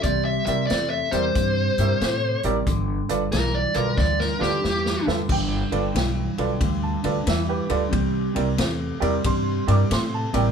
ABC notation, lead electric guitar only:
X:1
M:4/4
L:1/8
Q:"Swing" 1/4=91
K:Gmix
V:1 name="Lead electric guitar"
(3d e e (3d e c- c3 z | z2 (3_B d B (3d B G- G z | z8 | z8 |]